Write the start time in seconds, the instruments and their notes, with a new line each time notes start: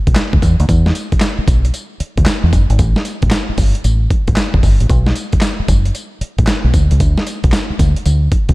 0.07 fingered electric bass B1, kick, closed hi-hat
0.15 snare, clap, closed hi-hat, tambourine
0.33 fingered electric bass D2, kick
0.42 fingered electric bass E2, kick, closed hi-hat, tambourine
0.60 fingered electric bass D2, closed hi-hat
0.69 fingered electric bass E2, kick, closed hi-hat, tambourine
0.86 snare
0.95 closed hi-hat, tambourine
1.12 muted fingered electric bass stroke, kick, closed hi-hat
1.21 snare, clap, closed hi-hat, tambourine
1.38 muted fingered electric bass stroke
1.48 fingered electric bass B1, kick, closed hi-hat, tambourine
1.65 closed hi-hat
1.74 closed hi-hat, tambourine
2.00 muted fingered electric bass stroke, closed hi-hat
2.17 fingered electric bass D2, kick, closed hi-hat
2.26 snare, clap, closed hi-hat, tambourine
2.44 fingered electric bass E2
2.53 fingered electric bass F#1, kick, closed hi-hat, tambourine
2.70 fingered electric bass G#1, closed hi-hat
2.79 fingered electric bass A1, kick, closed hi-hat, tambourine
2.96 snare
3.05 closed hi-hat, tambourine
3.22 fingered electric bass A1, kick, closed hi-hat
3.31 snare, clap, closed hi-hat, tambourine
3.49 muted fingered electric bass stroke
3.58 fingered electric bass G1, kick, open hi-hat, tambourine
3.75 closed hi-hat
3.84 fingered electric bass A1, closed hi-hat, tambourine
4.10 kick, closed hi-hat
4.27 fingered electric bass A1, kick, closed hi-hat
4.36 snare, clap, closed hi-hat, tambourine
4.54 fingered electric bass G1, kick
4.63 fingered electric bass G1, kick, open hi-hat, tambourine
4.80 fingered electric bass A1, closed hi-hat
4.90 fingered electric bass B1, kick, closed hi-hat, tambourine
5.07 snare
5.16 closed hi-hat, tambourine
5.33 muted fingered electric bass stroke, kick, closed hi-hat
5.41 snare, clap, closed hi-hat, tambourine
5.60 muted fingered electric bass stroke
5.68 fingered electric bass F#1, kick, closed hi-hat, tambourine
5.85 closed hi-hat
5.95 closed hi-hat, tambourine
6.21 muted fingered electric bass stroke, closed hi-hat
6.38 fingered electric bass A1, kick, closed hi-hat
6.47 snare, clap, closed hi-hat, tambourine
6.64 fingered electric bass B1
6.74 fingered electric bass D2, kick, closed hi-hat, tambourine
6.91 fingered electric bass C#2, closed hi-hat
7.00 fingered electric bass D2, kick, closed hi-hat, tambourine
7.18 snare
7.27 closed hi-hat, tambourine
7.44 fingered electric bass B1, kick, closed hi-hat
7.52 snare, clap, closed hi-hat, tambourine
7.70 muted fingered electric bass stroke
7.79 fingered electric bass D2, kick, closed hi-hat, tambourine
7.96 closed hi-hat
8.06 fingered electric bass D2, closed hi-hat, tambourine
8.32 kick, closed hi-hat
8.49 fingered electric bass B1, kick, closed hi-hat